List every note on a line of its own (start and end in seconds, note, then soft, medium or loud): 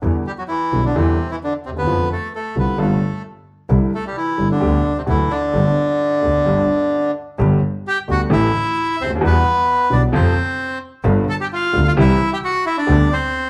0.02 0.22 E2 medium
0.02 0.22 D3 medium
0.02 0.22 E3 medium
0.02 0.22 G3 medium
0.02 0.22 B3 medium
0.02 0.22 E4 medium
0.27 0.32 G3 medium
0.27 0.32 G4 medium
0.38 0.44 F#3 medium
0.38 0.43 F#4 medium
0.48 0.82 E3 medium
0.48 0.84 E4 medium
0.72 0.92 B1 medium
0.72 0.92 B1 soft
0.72 0.92 B2 soft
0.72 0.92 D3 soft
0.72 0.92 G3 soft
0.72 0.92 B3 soft
0.72 0.92 E4 soft
0.85 0.95 D3 medium
0.85 0.96 D4 medium
0.95 1.15 E2 medium
0.95 1.28 C3 medium
0.95 1.15 D3 medium
0.95 1.15 E3 medium
0.95 1.15 G3 medium
0.95 1.31 C4 medium
0.95 1.15 C4 medium
0.95 1.15 E4 medium
1.31 1.37 E3 medium
1.31 1.36 E4 medium
1.44 1.54 D3 medium
1.44 1.53 D4 medium
1.65 1.87 D#2 soft
1.65 1.71 C3 medium
1.65 1.70 C4 medium
1.72 1.77 D2 soft
1.76 1.82 D#2 medium
1.76 2.09 B3 medium
1.76 2.09 B4 medium
1.82 1.87 E2 medium
1.87 2.06 F2 medium
1.87 2.07 F2 medium
1.87 2.06 D3 medium
1.87 2.06 F3 medium
1.87 2.06 A3 soft
1.87 2.07 C4 soft
1.87 2.07 F4 medium
2.12 2.32 A3 medium
2.12 2.33 A4 medium
2.35 2.58 A3 medium
2.35 2.56 A4 medium
2.55 2.75 C2 medium
2.55 2.75 C2 soft
2.55 2.75 C3 soft
2.55 2.75 D3 soft
2.55 2.75 A3 soft
2.55 2.79 B3 medium
2.55 2.75 C4 soft
2.55 2.75 F4 soft
2.55 2.79 B4 medium
2.78 2.98 G1 medium
2.78 2.98 G2 medium
2.78 2.98 D3 medium
2.78 2.98 G3 medium
2.78 3.23 A3 medium
2.78 2.98 B3 medium
2.78 2.98 F4 medium
2.78 3.23 A4 soft
3.69 3.89 C2 medium
3.69 3.89 C3 medium
3.69 3.89 D3 medium
3.69 3.89 G3 medium
3.69 3.89 C4 medium
3.69 3.89 E4 medium
3.95 4.05 A3 medium
3.95 4.05 A4 medium
4.06 4.16 G3 medium
4.06 4.16 G4 medium
4.16 4.48 E3 medium
4.16 4.48 E4 medium
4.37 4.58 G1 medium
4.37 4.57 G2 soft
4.37 4.57 D3 soft
4.37 4.57 G3 soft
4.37 4.58 C4 soft
4.37 4.57 E4 soft
4.51 4.93 D3 medium
4.51 4.98 D4 medium
4.60 4.80 D2 medium
4.60 4.81 D2 medium
4.60 4.80 D3 medium
4.60 4.80 G3 medium
4.60 4.81 B3 medium
4.60 4.80 G4 medium
4.98 5.02 C3 medium
4.98 5.02 C4 medium
5.06 5.26 D2 medium
5.06 5.27 D2 medium
5.06 5.26 D3 medium
5.06 5.30 E3 medium
5.06 5.26 F#3 medium
5.06 5.26 A3 medium
5.06 5.32 E4 medium
5.06 5.26 F#4 medium
5.31 7.11 D3 medium
5.31 7.11 D4 medium
5.53 5.73 G1 medium
5.53 5.73 G2 medium
5.53 5.72 D3 medium
5.53 5.73 A3 medium
5.53 5.73 B3 medium
5.53 5.73 G4 medium
6.21 6.41 D2 soft
6.21 6.42 D2 medium
6.21 6.41 D3 soft
6.21 6.41 A3 soft
6.21 6.41 B3 soft
6.21 6.41 G4 soft
6.46 6.65 G1 medium
6.46 6.66 G1 medium
6.46 6.65 G2 medium
6.46 6.65 D3 medium
6.46 6.65 A3 medium
6.46 6.65 B3 medium
6.46 6.65 G4 medium
7.38 7.58 G1 medium
7.38 7.59 G1 loud
7.38 7.58 G2 medium
7.38 7.58 D3 medium
7.38 7.58 G3 medium
7.38 7.58 B3 medium
7.38 7.58 G4 medium
7.87 7.97 G4 medium
7.87 7.99 G5 loud
8.08 8.27 D2 medium
8.08 8.28 D2 medium
8.08 8.27 D3 medium
8.08 8.27 G3 soft
8.08 8.27 B3 soft
8.08 8.21 F#4 medium
8.08 8.27 G4 medium
8.12 8.22 F#5 loud
8.30 8.49 A1 loud
8.30 8.50 A1 loud
8.30 8.50 A2 loud
8.30 8.49 E3 medium
8.30 8.50 A3 medium
8.30 8.50 C4 medium
8.30 8.96 E4 medium
8.30 8.50 G4 medium
8.30 9.03 E5 loud
8.99 9.22 D2 medium
8.99 9.11 C4 medium
8.99 9.11 C5 loud
9.04 9.10 C#2 medium
9.10 9.16 D2 medium
9.15 9.22 D#2 medium
9.21 9.41 E2 loud
9.21 9.42 E2 loud
9.21 9.41 E3 medium
9.21 9.41 G3 medium
9.21 9.41 B3 medium
9.21 9.41 F#4 medium
9.26 9.89 B3 medium
9.26 9.95 B4 loud
9.90 10.10 B1 medium
9.90 10.10 B2 medium
9.90 10.10 E3 medium
9.90 10.10 G3 medium
9.90 10.10 B3 medium
9.90 10.02 D4 medium
9.90 10.10 F#4 medium
9.90 10.02 D5 medium
10.12 10.33 F2 loud
10.12 10.32 C3 medium
10.12 10.32 F3 loud
10.12 10.33 A3 medium
10.12 10.79 C4 medium
10.12 10.33 F4 medium
10.12 10.79 C5 medium
11.04 11.24 G1 medium
11.04 11.24 G1 loud
11.04 11.24 G2 medium
11.04 11.24 D3 medium
11.04 11.24 G3 medium
11.04 11.24 B3 medium
11.04 11.24 F4 medium
11.29 11.34 A4 medium
11.29 11.35 A5 loud
11.41 11.45 G4 medium
11.41 11.48 G5 medium
11.53 11.84 F4 medium
11.53 11.87 F5 loud
11.73 11.93 D2 medium
11.73 11.92 D3 medium
11.73 11.92 G3 medium
11.73 11.93 B3 medium
11.73 11.93 F4 medium
11.87 11.92 F4 medium
11.87 11.93 F5 loud
11.97 12.16 C2 loud
11.97 12.16 C3 loud
11.97 12.16 E3 medium
11.97 12.16 G3 medium
11.97 12.16 C4 medium
11.97 12.30 E4 medium
11.97 12.16 G4 loud
12.01 12.31 E5 loud
12.33 12.38 G4 medium
12.33 12.38 G5 loud
12.44 12.65 F#4 medium
12.44 12.65 F#5 loud
12.65 12.76 E4 medium
12.65 12.77 E5 loud
12.77 13.09 D4 medium
12.77 13.13 D5 loud
12.87 13.07 D2 medium
12.87 13.08 D2 loud
12.87 13.07 D3 medium
12.87 13.07 G3 medium
12.87 13.07 B3 medium
12.87 13.07 G4 medium
13.12 13.50 C4 medium
13.12 13.50 C5 loud